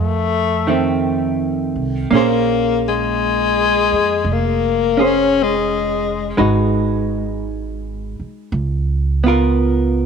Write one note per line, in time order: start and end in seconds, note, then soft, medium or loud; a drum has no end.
0.00 1.71 F2 medium
0.00 0.99 A3 medium
0.67 2.10 D#3 soft
0.67 2.10 A3 soft
0.67 2.11 C4 soft
1.76 2.07 C2 soft
2.11 3.88 A#1 medium
2.11 6.37 A#3 soft
2.11 4.96 C#4 soft
2.11 4.98 G#4 soft
2.15 2.82 A#3 medium
2.15 5.00 C5 soft
2.88 4.34 G#3 medium
3.92 4.23 F2 medium
4.24 6.35 F1 medium
4.33 5.06 A#3 medium
4.97 6.38 C#4 soft
4.97 6.38 G#4 soft
4.97 6.38 C5 soft
5.05 5.44 C#4 medium
5.43 6.45 G#3 medium
6.37 8.15 G#1 medium
6.37 8.52 G#3 soft
6.37 8.52 D#4 soft
6.37 8.52 F#4 soft
6.37 8.52 B4 soft
8.20 muted upright bass stroke soft
8.52 10.06 C#2 medium
9.24 10.06 B3 soft
9.24 10.06 F4 soft
9.28 10.06 A#4 medium